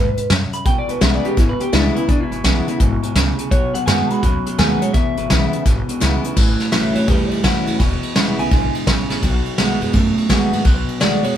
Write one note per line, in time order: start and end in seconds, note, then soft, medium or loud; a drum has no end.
0.00 0.12 D#2 loud
0.00 0.29 G#2 medium
0.00 0.29 B4 loud
0.17 muted upright bass stroke medium
0.17 closed hi-hat medium
0.30 0.48 F#2 medium
0.30 0.65 F#2 loud
0.30 snare loud
0.30 closed hi-hat medium
0.53 0.65 B5 loud
0.53 muted upright bass stroke medium
0.53 closed hi-hat medium
0.65 0.86 E2 medium
0.65 1.35 E2 medium
0.65 0.87 B2 medium
0.65 0.78 G5 loud
0.65 kick loud
0.65 closed hi-hat medium
0.78 0.90 D5 medium
0.88 0.99 G#1 medium
0.88 1.00 E2 medium
0.88 1.00 B2 medium
0.88 1.02 B4 loud
0.88 closed hi-hat medium
1.01 1.19 B1 medium
1.01 1.22 E2 medium
1.01 1.22 C#3 medium
1.01 1.36 E3 medium
1.01 1.36 G#3 medium
1.01 1.36 B3 medium
1.01 1.36 E4 medium
1.01 1.15 E5 loud
1.01 snare loud
1.01 closed hi-hat medium
1.15 1.26 D5 loud
1.24 1.36 E2 medium
1.24 1.36 C#3 medium
1.24 1.38 G4 medium
1.24 closed hi-hat medium
1.37 1.55 G#1 loud
1.37 1.58 E2 medium
1.37 2.06 B2 medium
1.37 1.58 B2 medium
1.37 1.49 E4 medium
1.37 kick loud
1.37 snare soft
1.37 closed hi-hat medium
1.49 1.61 B4 loud
1.60 1.71 E2 medium
1.60 1.72 B2 medium
1.60 1.73 G4 loud
1.60 closed hi-hat medium
1.73 1.91 C#2 medium
1.73 1.93 E2 medium
1.73 1.94 C#3 loud
1.73 1.95 E3 loud
1.73 1.95 G#3 loud
1.73 1.95 B3 loud
1.73 1.84 D4 medium
1.73 1.95 E4 loud
1.73 snare loud
1.73 closed hi-hat medium
1.95 2.07 E2 medium
1.95 2.07 C#3 medium
1.95 2.09 B3 medium
1.95 2.08 E4 loud
1.95 2.08 E4 medium
1.95 muted upright bass stroke medium
1.95 closed hi-hat medium
2.08 2.29 E2 medium
2.08 2.78 E2 medium
2.08 2.29 B2 medium
2.08 2.21 D4 medium
2.08 kick loud
2.08 closed hi-hat medium
2.21 3.24 E4 loud
2.31 2.41 G#1 loud
2.31 2.43 E2 medium
2.31 2.43 B2 medium
2.31 closed hi-hat medium
2.44 2.62 B1 loud
2.44 2.65 E2 medium
2.44 2.65 C#3 medium
2.44 2.66 E3 medium
2.44 2.67 G#3 medium
2.44 2.67 B3 loud
2.44 2.67 E4 loud
2.44 snare loud
2.44 closed hi-hat medium
2.67 2.78 E2 medium
2.67 2.79 C#3 medium
2.67 2.81 B3 soft
2.67 2.80 E4 medium
2.67 muted upright bass stroke medium
2.67 closed hi-hat medium
2.79 2.98 G#1 medium
2.79 3.00 E2 medium
2.79 3.15 G#2 loud
2.79 3.01 B2 medium
2.79 kick loud
2.79 closed hi-hat medium
3.02 3.14 E2 medium
3.02 3.14 B2 medium
3.02 closed hi-hat medium
3.15 3.33 C#2 medium
3.15 3.36 E2 medium
3.15 3.51 A2 loud
3.15 3.36 C#3 loud
3.15 snare loud
3.15 closed hi-hat medium
3.38 3.50 E2 medium
3.38 3.50 C#3 medium
3.38 closed hi-hat medium
3.51 3.72 B2 loud
3.51 4.20 B2 loud
3.51 3.72 F#3 medium
3.51 3.74 C#5 loud
3.51 kick loud
3.51 closed hi-hat medium
3.74 3.84 D#2 loud
3.74 3.86 B2 medium
3.74 3.86 F#3 loud
3.74 3.86 F#5 loud
3.74 closed hi-hat medium
3.86 4.05 F#2 medium
3.86 4.08 B2 medium
3.86 4.09 D#3 medium
3.86 4.08 G#3 loud
3.86 4.09 A3 medium
3.86 4.10 B3 loud
3.86 4.09 F#4 loud
3.86 4.11 G#5 loud
3.86 snare loud
3.86 closed hi-hat medium
4.10 4.21 B2 medium
4.10 4.22 G#3 medium
4.10 4.23 B3 medium
4.10 4.22 F#4 medium
4.10 4.57 B5 medium
4.10 muted upright bass stroke medium
4.10 closed hi-hat medium
4.23 4.40 D#2 medium
4.23 4.92 F#2 loud
4.23 4.44 B2 medium
4.23 4.44 F#3 medium
4.23 kick loud
4.23 closed hi-hat medium
4.46 4.57 B2 medium
4.46 4.58 F#3 medium
4.46 muted upright bass stroke medium
4.46 closed hi-hat medium
4.58 4.76 D#2 medium
4.58 4.79 B2 medium
4.58 4.81 D#3 loud
4.58 4.79 G#3 loud
4.58 4.81 A3 loud
4.58 4.81 B3 loud
4.58 4.81 F#4 loud
4.58 4.81 G#5 medium
4.58 snare loud
4.58 closed hi-hat medium
4.81 4.93 B2 medium
4.81 4.93 G#3 medium
4.81 4.95 B3 soft
4.81 4.94 F#4 medium
4.81 4.93 C#5 medium
4.81 closed hi-hat medium
4.93 5.15 E2 medium
4.93 5.63 E2 medium
4.93 5.15 B2 loud
4.93 5.63 E5 loud
4.93 kick loud
4.93 closed hi-hat medium
5.17 5.27 G#1 medium
5.17 5.29 E2 medium
5.17 5.29 B2 loud
5.17 closed hi-hat medium
5.30 5.48 B1 loud
5.30 5.51 E2 medium
5.30 5.51 C#3 medium
5.30 5.52 E3 medium
5.30 5.52 G#3 medium
5.30 5.53 B3 medium
5.30 5.52 E4 medium
5.30 snare loud
5.30 closed hi-hat medium
5.53 5.64 E2 medium
5.53 5.64 C#3 medium
5.53 5.66 B3 soft
5.53 5.65 E4 medium
5.53 muted upright bass stroke medium
5.53 closed hi-hat medium
5.65 5.83 G#1 medium
5.65 5.86 E2 medium
5.65 5.86 B2 medium
5.65 6.34 B2 loud
5.65 kick loud
5.65 snare soft
5.65 closed hi-hat medium
5.88 6.00 E2 medium
5.88 6.00 B2 medium
5.88 muted upright bass stroke medium
5.88 closed hi-hat medium
6.00 6.19 C#2 medium
6.00 6.22 E2 medium
6.00 6.22 C#3 medium
6.00 6.23 E3 loud
6.00 6.23 G#3 loud
6.00 6.24 B3 loud
6.00 6.23 E4 loud
6.00 snare loud
6.00 closed hi-hat medium
6.24 6.35 E2 medium
6.24 6.36 C#3 medium
6.24 6.37 B3 soft
6.24 6.36 E4 medium
6.24 closed hi-hat medium
6.36 6.56 A1 medium
6.36 6.70 A2 medium
6.36 7.06 A2 medium
6.36 6.70 E3 loud
6.36 kick loud
6.36 snare soft
6.36 crash loud
6.60 snare soft
6.60 ride medium
6.72 6.92 A1 medium
6.72 6.93 A2 medium
6.72 6.94 E3 medium
6.72 6.93 F#3 medium
6.72 6.95 A3 medium
6.72 6.95 C#4 medium
6.72 6.93 E4 medium
6.72 6.95 E5 medium
6.72 snare loud
6.72 ride medium
6.95 7.06 E2 medium
6.95 7.07 A2 medium
6.95 7.07 F#3 medium
6.95 7.08 C#4 soft
6.95 7.07 E4 medium
6.95 7.08 C#5 medium
6.95 ride medium
7.08 7.28 E2 loud
7.08 7.77 E2 medium
7.08 7.41 A2 medium
7.08 7.41 G3 medium
7.08 7.31 B4 medium
7.08 kick loud
7.08 snare soft
7.08 ride medium
7.31 7.43 E5 medium
7.31 muted upright bass stroke medium
7.31 ride medium
7.43 7.63 F#2 loud
7.43 7.64 A2 medium
7.43 7.66 E3 loud
7.43 7.65 F#3 medium
7.43 7.66 A3 loud
7.43 7.66 C#4 loud
7.43 7.65 E4 loud
7.43 7.81 F#5 medium
7.43 kick medium
7.43 snare loud
7.43 ride medium
7.67 7.78 D#2 medium
7.67 7.78 A2 medium
7.67 7.79 F#3 medium
7.67 7.80 C#4 soft
7.67 7.79 E4 medium
7.67 ride medium
7.80 7.99 E1 loud
7.80 8.13 E2 medium
7.80 8.49 E2 medium
7.80 8.13 B2 medium
7.80 8.37 G#5 medium
7.80 kick loud
7.80 snare soft
7.80 ride medium
8.03 ride medium
8.15 8.35 E1 loud
8.15 8.36 E2 medium
8.15 8.36 C#3 medium
8.15 8.38 E3 medium
8.15 8.38 G#3 loud
8.15 8.38 B3 medium
8.15 8.37 E4 medium
8.15 snare loud
8.15 ride medium
8.38 8.49 B1 loud
8.38 8.50 E2 medium
8.38 8.50 C#3 medium
8.38 8.51 B3 soft
8.38 8.51 E4 medium
8.38 8.74 G#5 medium
8.38 ride medium
8.51 8.71 B1 medium
8.51 8.84 E2 medium
8.51 8.86 G#2 loud
8.51 8.84 D3 medium
8.51 kick loud
8.51 snare soft
8.51 ride medium
8.75 ride medium
8.86 9.07 E2 medium
8.86 9.21 A2 medium
8.86 9.08 C#3 loud
8.86 kick medium
8.86 snare loud
8.86 ride medium
9.09 9.20 A#1 medium
9.09 9.21 E2 medium
9.09 9.21 C#3 medium
9.09 snare soft
9.09 ride medium
9.22 9.42 B1 medium
9.22 9.56 B2 medium
9.22 9.92 B2 medium
9.22 9.56 F#3 loud
9.22 kick loud
9.22 snare soft
9.22 ride medium
9.45 muted upright bass stroke medium
9.45 ride medium
9.58 9.78 B1 loud
9.58 9.79 B2 medium
9.58 9.80 D#3 medium
9.58 9.79 G#3 medium
9.58 9.80 A3 medium
9.58 9.81 B3 medium
9.58 9.80 F#4 loud
9.58 snare loud
9.58 ride medium
9.81 9.92 F#2 loud
9.81 9.93 B2 medium
9.81 9.93 G#3 medium
9.81 9.94 B3 soft
9.81 9.93 F#4 medium
9.81 ride medium
9.93 10.62 F#2 loud
9.93 10.14 F#2 medium
9.93 10.27 B2 medium
9.93 10.27 A3 loud
9.93 kick loud
9.93 ride medium
10.17 muted upright bass stroke medium
10.17 ride medium
10.29 10.50 B2 medium
10.29 10.64 D#3 loud
10.29 10.50 G#3 loud
10.29 10.64 A3 loud
10.29 10.64 B3 loud
10.29 10.65 F#4 loud
10.29 kick medium
10.29 snare loud
10.29 ride medium
10.52 10.63 G#2 medium
10.52 10.64 B2 medium
10.52 10.64 G#3 medium
10.52 ride medium
10.65 10.85 B1 medium
10.65 11.34 B2 medium
10.65 10.98 B2 medium
10.65 10.99 F#3 loud
10.65 kick loud
10.65 snare soft
10.65 ride medium
10.88 ride medium
11.00 11.21 B1 loud
11.00 11.22 B2 medium
11.00 11.23 D#3 medium
11.00 11.22 G#3 medium
11.00 11.23 A3 medium
11.00 11.23 B3 loud
11.00 11.22 F#4 loud
11.00 11.23 D5 loud
11.00 snare loud
11.00 ride medium
11.23 11.35 F#2 loud
11.23 11.35 B2 medium
11.23 11.35 G#3 medium
11.23 11.36 B3 medium
11.23 11.36 F#4 medium
11.23 11.36 C#5 medium
11.23 ride medium